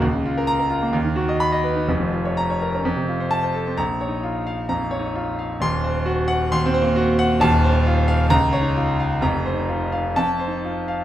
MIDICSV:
0, 0, Header, 1, 2, 480
1, 0, Start_track
1, 0, Key_signature, -5, "minor"
1, 0, Tempo, 456274
1, 38, Time_signature, 4, 2, 24, 8
1, 1478, Tempo, 476948
1, 3878, Tempo, 451467
1, 8678, Tempo, 466200
1, 11498, End_track
2, 0, Start_track
2, 0, Title_t, "Grand piano"
2, 0, Program_c, 0, 0
2, 0, Control_c, 0, 64, 127
2, 21, Note_on_c, 0, 37, 96
2, 55, Control_c, 0, 64, 0
2, 149, Note_on_c, 0, 49, 69
2, 254, Control_c, 0, 64, 127
2, 269, Note_on_c, 0, 65, 84
2, 343, Note_off_c, 0, 49, 0
2, 395, Note_on_c, 0, 70, 86
2, 462, Note_off_c, 0, 65, 0
2, 497, Note_on_c, 0, 82, 115
2, 584, Note_off_c, 0, 70, 0
2, 624, Note_on_c, 0, 70, 80
2, 695, Note_off_c, 0, 82, 0
2, 736, Note_on_c, 0, 65, 78
2, 818, Note_off_c, 0, 70, 0
2, 865, Note_on_c, 0, 58, 75
2, 934, Note_off_c, 0, 65, 0
2, 953, Note_off_c, 0, 37, 0
2, 976, Note_on_c, 0, 39, 100
2, 987, Note_off_c, 0, 58, 0
2, 1011, Control_c, 0, 64, 0
2, 1101, Note_on_c, 0, 51, 79
2, 1200, Control_c, 0, 64, 127
2, 1219, Note_on_c, 0, 66, 81
2, 1301, Note_off_c, 0, 51, 0
2, 1355, Note_on_c, 0, 75, 86
2, 1422, Note_off_c, 0, 66, 0
2, 1474, Note_on_c, 0, 83, 116
2, 1549, Note_off_c, 0, 75, 0
2, 1596, Note_on_c, 0, 75, 79
2, 1666, Note_off_c, 0, 83, 0
2, 1713, Note_on_c, 0, 71, 73
2, 1787, Note_off_c, 0, 75, 0
2, 1835, Note_on_c, 0, 63, 69
2, 1907, Note_off_c, 0, 71, 0
2, 1922, Note_off_c, 0, 39, 0
2, 1953, Note_on_c, 0, 29, 88
2, 1957, Note_off_c, 0, 63, 0
2, 1963, Note_on_c, 0, 41, 88
2, 1978, Control_c, 0, 64, 0
2, 2077, Note_on_c, 0, 53, 71
2, 2127, Control_c, 0, 64, 127
2, 2206, Note_on_c, 0, 65, 74
2, 2273, Note_off_c, 0, 53, 0
2, 2332, Note_on_c, 0, 73, 77
2, 2398, Note_off_c, 0, 65, 0
2, 2451, Note_on_c, 0, 82, 105
2, 2521, Note_off_c, 0, 73, 0
2, 2580, Note_on_c, 0, 73, 75
2, 2642, Note_off_c, 0, 82, 0
2, 2702, Note_on_c, 0, 70, 73
2, 2767, Note_off_c, 0, 73, 0
2, 2831, Note_on_c, 0, 61, 70
2, 2888, Note_off_c, 0, 70, 0
2, 2897, Note_off_c, 0, 29, 0
2, 2903, Note_off_c, 0, 41, 0
2, 2932, Note_on_c, 0, 41, 100
2, 2940, Note_off_c, 0, 61, 0
2, 2946, Control_c, 0, 64, 0
2, 3043, Note_on_c, 0, 48, 73
2, 3149, Control_c, 0, 64, 127
2, 3167, Note_on_c, 0, 65, 73
2, 3236, Note_off_c, 0, 48, 0
2, 3288, Note_on_c, 0, 72, 79
2, 3357, Note_off_c, 0, 65, 0
2, 3392, Note_on_c, 0, 81, 108
2, 3477, Note_off_c, 0, 72, 0
2, 3516, Note_on_c, 0, 72, 79
2, 3588, Note_off_c, 0, 81, 0
2, 3629, Note_on_c, 0, 69, 69
2, 3711, Note_off_c, 0, 72, 0
2, 3757, Note_on_c, 0, 60, 64
2, 3825, Note_off_c, 0, 69, 0
2, 3852, Note_off_c, 0, 41, 0
2, 3863, Note_on_c, 0, 82, 101
2, 3866, Note_on_c, 0, 34, 86
2, 3876, Note_off_c, 0, 60, 0
2, 3898, Control_c, 0, 64, 0
2, 4048, Control_c, 0, 64, 127
2, 4111, Note_on_c, 0, 73, 75
2, 4188, Note_on_c, 0, 63, 65
2, 4260, Note_off_c, 0, 82, 0
2, 4350, Note_on_c, 0, 65, 77
2, 4356, Note_off_c, 0, 63, 0
2, 4502, Note_off_c, 0, 73, 0
2, 4597, Note_on_c, 0, 77, 84
2, 4741, Note_off_c, 0, 65, 0
2, 4809, Note_off_c, 0, 34, 0
2, 4833, Note_on_c, 0, 41, 75
2, 4835, Note_on_c, 0, 82, 92
2, 4987, Note_off_c, 0, 77, 0
2, 5068, Note_on_c, 0, 73, 81
2, 5098, Note_off_c, 0, 41, 0
2, 5158, Note_on_c, 0, 63, 70
2, 5229, Note_off_c, 0, 82, 0
2, 5325, Note_off_c, 0, 63, 0
2, 5330, Note_on_c, 0, 65, 79
2, 5466, Note_off_c, 0, 73, 0
2, 5577, Note_on_c, 0, 77, 79
2, 5717, Note_off_c, 0, 65, 0
2, 5805, Note_on_c, 0, 27, 89
2, 5817, Note_off_c, 0, 77, 0
2, 5818, Note_on_c, 0, 39, 99
2, 5820, Note_on_c, 0, 84, 111
2, 5831, Control_c, 0, 64, 0
2, 5975, Control_c, 0, 64, 127
2, 6059, Note_on_c, 0, 72, 83
2, 6201, Note_off_c, 0, 84, 0
2, 6290, Note_on_c, 0, 66, 89
2, 6441, Note_off_c, 0, 72, 0
2, 6523, Note_on_c, 0, 78, 101
2, 6679, Note_off_c, 0, 66, 0
2, 6744, Note_off_c, 0, 27, 0
2, 6751, Note_off_c, 0, 39, 0
2, 6778, Note_on_c, 0, 39, 106
2, 6779, Note_on_c, 0, 84, 113
2, 6916, Note_off_c, 0, 78, 0
2, 6925, Note_on_c, 0, 60, 95
2, 7016, Note_on_c, 0, 72, 100
2, 7098, Note_on_c, 0, 58, 84
2, 7163, Note_off_c, 0, 84, 0
2, 7187, Note_off_c, 0, 60, 0
2, 7249, Note_on_c, 0, 66, 95
2, 7257, Note_off_c, 0, 58, 0
2, 7398, Note_off_c, 0, 72, 0
2, 7491, Note_on_c, 0, 78, 107
2, 7632, Note_off_c, 0, 66, 0
2, 7702, Note_off_c, 0, 39, 0
2, 7717, Note_on_c, 0, 27, 114
2, 7726, Note_on_c, 0, 39, 121
2, 7727, Note_on_c, 0, 81, 127
2, 7729, Note_off_c, 0, 78, 0
2, 7752, Control_c, 0, 64, 0
2, 7924, Control_c, 0, 64, 127
2, 7973, Note_on_c, 0, 72, 94
2, 8048, Note_on_c, 0, 63, 77
2, 8107, Note_off_c, 0, 81, 0
2, 8205, Note_off_c, 0, 63, 0
2, 8212, Note_on_c, 0, 65, 96
2, 8350, Note_off_c, 0, 72, 0
2, 8438, Note_on_c, 0, 77, 108
2, 8588, Note_off_c, 0, 65, 0
2, 8644, Note_off_c, 0, 27, 0
2, 8649, Note_off_c, 0, 39, 0
2, 8674, Note_on_c, 0, 82, 127
2, 8678, Note_off_c, 0, 77, 0
2, 8678, Note_on_c, 0, 37, 120
2, 8698, Control_c, 0, 64, 0
2, 8846, Control_c, 0, 64, 127
2, 8908, Note_on_c, 0, 73, 97
2, 8994, Note_on_c, 0, 63, 85
2, 9054, Note_off_c, 0, 82, 0
2, 9153, Note_off_c, 0, 63, 0
2, 9153, Note_on_c, 0, 65, 89
2, 9293, Note_off_c, 0, 73, 0
2, 9392, Note_on_c, 0, 77, 86
2, 9535, Note_off_c, 0, 65, 0
2, 9602, Note_off_c, 0, 37, 0
2, 9615, Note_on_c, 0, 29, 91
2, 9622, Note_on_c, 0, 82, 98
2, 9624, Note_on_c, 0, 41, 88
2, 9631, Note_off_c, 0, 77, 0
2, 9652, Control_c, 0, 64, 0
2, 9835, Control_c, 0, 64, 127
2, 9864, Note_on_c, 0, 72, 79
2, 9940, Note_on_c, 0, 63, 60
2, 10008, Note_off_c, 0, 82, 0
2, 10100, Note_on_c, 0, 65, 78
2, 10103, Note_off_c, 0, 63, 0
2, 10247, Note_off_c, 0, 72, 0
2, 10345, Note_on_c, 0, 77, 82
2, 10487, Note_off_c, 0, 65, 0
2, 10551, Note_off_c, 0, 29, 0
2, 10555, Note_off_c, 0, 41, 0
2, 10587, Note_off_c, 0, 77, 0
2, 10591, Note_on_c, 0, 81, 115
2, 10596, Note_on_c, 0, 41, 90
2, 10611, Control_c, 0, 64, 0
2, 10785, Control_c, 0, 64, 127
2, 10832, Note_on_c, 0, 72, 74
2, 10915, Note_on_c, 0, 63, 62
2, 10981, Note_off_c, 0, 81, 0
2, 11077, Note_off_c, 0, 63, 0
2, 11088, Note_on_c, 0, 65, 73
2, 11222, Note_off_c, 0, 72, 0
2, 11330, Note_on_c, 0, 77, 78
2, 11469, Note_off_c, 0, 65, 0
2, 11498, Note_off_c, 0, 41, 0
2, 11498, Note_off_c, 0, 77, 0
2, 11498, End_track
0, 0, End_of_file